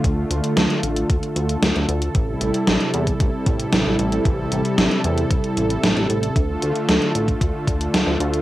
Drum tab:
HH |x-xxxxxxxxxxxxxx|x-xxxxxxx-xxx-xx|x-xxxxxxxxxxxxxx|x-xxxxxxx-xxx-xx|
SD |----o-------o---|----o-------o---|----o-------o---|----o-------o---|
BD |o-------o-------|o------oo-o-----|o-------o-------|o------oo-o-----|